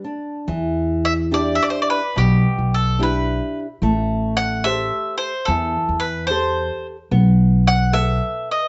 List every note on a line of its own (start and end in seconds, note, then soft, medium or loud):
0.04 0.47 D4 soft
0.48 1.58 E2 medium
0.48 1.30 E3 medium
1.05 1.13 E5 medium
1.31 1.99 D4 soft
1.31 2.00 E4 soft
1.31 2.00 G4 medium
1.31 1.54 D5 medium
1.55 1.63 E5 medium
1.63 1.70 D5 medium
1.70 1.80 C5 medium
1.82 1.89 D5 medium
1.90 2.18 B4 medium
2.16 2.44 B1 medium
2.16 2.97 B2 medium
2.16 2.74 G4 medium
2.58 3.39 B1 medium
2.74 3.02 A4 medium
2.99 3.65 D4 soft
2.99 3.66 E4 soft
2.99 3.66 G4 medium
2.99 3.59 B4 medium
3.82 4.89 A1 loud
3.82 4.63 A3 medium
4.37 4.66 F#5 loud
4.64 5.31 G4 soft
4.64 5.31 A4 soft
4.64 5.32 C5 medium
4.64 5.17 E5 loud
5.18 5.47 C5 medium
5.45 5.75 E2 loud
5.45 6.28 E3 medium
5.45 6.03 A4 medium
5.89 6.69 E2 medium
6.00 6.26 B4 medium
6.27 6.96 G4 medium
6.27 6.96 A4 soft
6.27 6.86 C5 medium
6.31 6.96 C5 medium
7.11 8.19 B1 loud
7.11 7.92 B3 medium
7.67 7.95 F#5 loud
7.93 8.60 A4 medium
7.93 8.60 B4 soft
7.93 8.50 E5 loud
7.93 8.60 F#5 medium
8.51 8.68 D#5 medium